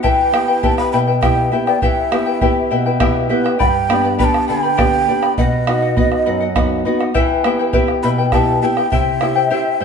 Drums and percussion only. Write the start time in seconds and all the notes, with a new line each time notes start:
0.04 bombo low
0.34 bombo rim
0.49 bombo rim
0.63 bombo low
0.78 bombo rim
1.23 bombo rim, bombo low
1.67 bombo rim
1.82 bombo rim, bombo low
1.97 bombo rim
2.12 bombo rim
2.41 bombo rim, bombo low
2.86 bombo rim
3.00 bombo rim, bombo low
3.16 bombo rim
3.31 bombo rim
3.46 bombo rim
3.60 bombo low
3.90 bombo rim
4.05 bombo rim
4.20 bombo low
4.34 bombo rim
4.79 bombo rim, bombo low
5.23 bombo rim
5.38 bombo low
5.67 bombo rim
5.82 bombo rim
5.97 bombo low
6.12 bombo rim
6.56 bombo rim, bombo low
7.01 bombo rim
7.15 bombo low
7.44 bombo rim
7.59 bombo rim
7.73 bombo low
7.88 bombo rim
8.32 bombo rim, bombo low
8.77 bombo rim
8.92 bombo low
9.21 bombo rim
9.80 bombo rim